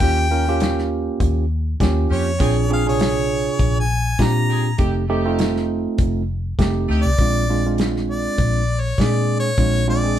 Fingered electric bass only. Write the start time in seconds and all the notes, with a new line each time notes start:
0.00 D#2
1.20 D#2
1.80 D#2
2.10 F2
2.40 A#1
3.59 A#1
4.19 A#2
4.79 F1
5.99 F1
6.59 F1
6.89 D2
7.05 C2
7.19 A#1
8.38 A#1
8.98 A#2
9.58 A#1